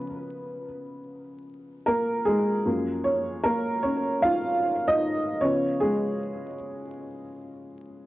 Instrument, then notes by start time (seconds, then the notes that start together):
upright piano
Already playing: C#3 F3 B3 B4
1.86 A#3 A#4
2.25 G#3 G#4
2.66 F#2 F3 A#3
3.04 C#4 C#5
3.44 A#3 A#4
3.83 C#4 C#5
4.22 F4 F5
4.88 D#4 D#5
5.41 C#3 F3 B3 C#4 C#5
5.80 G#3 G#4